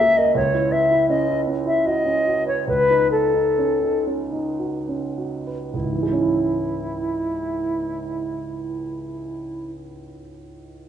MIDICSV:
0, 0, Header, 1, 3, 480
1, 0, Start_track
1, 0, Key_signature, 4, "minor"
1, 0, Tempo, 741656
1, 228, Time_signature, 3, 2, 24, 8
1, 1199, Tempo, 816327
1, 1679, Tempo, 898204
1, 2159, Tempo, 1018676
1, 2639, Tempo, 1149425
1, 3119, Tempo, 1079137
1, 5411, End_track
2, 0, Start_track
2, 0, Title_t, "Flute"
2, 0, Program_c, 0, 73
2, 0, Note_on_c, 0, 76, 54
2, 112, Note_on_c, 0, 75, 56
2, 122, Note_off_c, 0, 76, 0
2, 228, Note_off_c, 0, 75, 0
2, 234, Note_on_c, 0, 73, 56
2, 466, Note_on_c, 0, 76, 53
2, 475, Note_off_c, 0, 73, 0
2, 702, Note_off_c, 0, 76, 0
2, 706, Note_on_c, 0, 75, 56
2, 914, Note_off_c, 0, 75, 0
2, 1084, Note_on_c, 0, 76, 53
2, 1205, Note_on_c, 0, 75, 50
2, 1213, Note_off_c, 0, 76, 0
2, 1559, Note_off_c, 0, 75, 0
2, 1569, Note_on_c, 0, 73, 43
2, 1683, Note_off_c, 0, 73, 0
2, 1686, Note_on_c, 0, 71, 52
2, 1910, Note_off_c, 0, 71, 0
2, 1919, Note_on_c, 0, 69, 40
2, 2384, Note_off_c, 0, 69, 0
2, 3112, Note_on_c, 0, 64, 33
2, 4891, Note_off_c, 0, 64, 0
2, 5411, End_track
3, 0, Start_track
3, 0, Title_t, "Grand piano"
3, 0, Program_c, 1, 0
3, 0, Control_c, 1, 64, 127
3, 0, Note_on_c, 1, 37, 45
3, 0, Note_on_c, 1, 58, 37
3, 0, Note_on_c, 1, 66, 37
3, 0, Note_on_c, 1, 68, 39
3, 0, Note_on_c, 1, 70, 38
3, 7, Note_off_c, 1, 68, 0
3, 7, Note_on_c, 1, 68, 36
3, 72, Note_off_c, 1, 58, 0
3, 119, Note_off_c, 1, 70, 0
3, 119, Note_on_c, 1, 70, 38
3, 186, Note_off_c, 1, 68, 0
3, 201, Note_off_c, 1, 37, 0
3, 225, Note_on_c, 1, 37, 46
3, 232, Note_off_c, 1, 70, 0
3, 241, Control_c, 1, 64, 0
3, 242, Note_off_c, 1, 66, 0
3, 337, Control_c, 1, 64, 127
3, 349, Note_on_c, 1, 64, 34
3, 463, Note_on_c, 1, 71, 35
3, 536, Note_off_c, 1, 64, 0
3, 587, Note_on_c, 1, 64, 31
3, 655, Note_off_c, 1, 71, 0
3, 709, Note_on_c, 1, 61, 35
3, 778, Note_off_c, 1, 64, 0
3, 832, Note_on_c, 1, 64, 34
3, 901, Note_off_c, 1, 61, 0
3, 953, Note_on_c, 1, 61, 34
3, 1026, Note_off_c, 1, 64, 0
3, 1072, Note_on_c, 1, 64, 32
3, 1151, Note_off_c, 1, 61, 0
3, 1201, Note_on_c, 1, 66, 33
3, 1269, Note_off_c, 1, 64, 0
3, 1318, Note_on_c, 1, 61, 29
3, 1389, Note_off_c, 1, 66, 0
3, 1438, Note_on_c, 1, 66, 33
3, 1508, Note_off_c, 1, 61, 0
3, 1559, Note_on_c, 1, 71, 30
3, 1631, Note_off_c, 1, 66, 0
3, 1654, Note_off_c, 1, 37, 0
3, 1680, Note_off_c, 1, 71, 0
3, 1683, Note_on_c, 1, 37, 38
3, 1688, Control_c, 1, 64, 0
3, 1779, Control_c, 1, 64, 127
3, 1805, Note_on_c, 1, 63, 29
3, 1920, Note_on_c, 1, 71, 29
3, 1990, Note_off_c, 1, 63, 0
3, 2038, Note_on_c, 1, 63, 27
3, 2112, Note_off_c, 1, 71, 0
3, 2166, Note_on_c, 1, 61, 29
3, 2229, Note_off_c, 1, 63, 0
3, 2274, Note_on_c, 1, 63, 25
3, 2346, Note_off_c, 1, 61, 0
3, 2396, Note_on_c, 1, 61, 25
3, 2463, Note_off_c, 1, 63, 0
3, 2515, Note_on_c, 1, 63, 24
3, 2590, Note_off_c, 1, 61, 0
3, 2640, Note_on_c, 1, 66, 24
3, 2710, Note_off_c, 1, 63, 0
3, 2764, Note_on_c, 1, 61, 23
3, 2831, Note_off_c, 1, 66, 0
3, 2886, Note_on_c, 1, 66, 22
3, 2958, Note_off_c, 1, 61, 0
3, 3008, Note_on_c, 1, 71, 21
3, 3076, Note_off_c, 1, 66, 0
3, 3103, Note_off_c, 1, 37, 0
3, 3120, Note_on_c, 1, 37, 29
3, 3121, Note_off_c, 1, 71, 0
3, 3128, Control_c, 1, 64, 0
3, 3164, Note_on_c, 1, 44, 24
3, 3208, Note_on_c, 1, 52, 26
3, 3248, Note_on_c, 1, 56, 23
3, 3254, Control_c, 1, 64, 127
3, 3292, Note_on_c, 1, 61, 25
3, 3332, Note_on_c, 1, 64, 27
3, 4937, Note_off_c, 1, 37, 0
3, 4981, Note_off_c, 1, 44, 0
3, 5025, Note_off_c, 1, 52, 0
3, 5065, Note_off_c, 1, 56, 0
3, 5109, Note_off_c, 1, 61, 0
3, 5149, Note_off_c, 1, 64, 0
3, 5411, End_track
0, 0, End_of_file